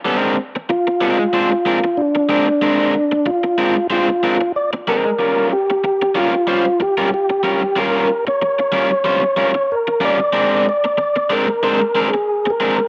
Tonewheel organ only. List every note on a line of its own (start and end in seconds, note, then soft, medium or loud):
0.69 2.02 F4 loud
1.97 3.30 D4 medium
3.27 3.87 F4 loud
3.92 4.52 F4 loud
4.56 4.70 D5 medium
4.88 5.48 A#4 loud
5.53 6.19 G4 loud
6.17 6.83 F4 loud
6.82 7.12 G4 loud
7.14 7.80 G4 medium
7.79 8.25 A#4 loud
8.28 9.75 C#5 loud
9.72 10.04 A#4 medium
10.05 10.68 D5 loud
10.69 11.35 D5 loud
11.33 11.63 A#4 medium
11.64 12.08 A#4 loud
12.08 12.52 G#4 medium
12.50 12.88 A#4 loud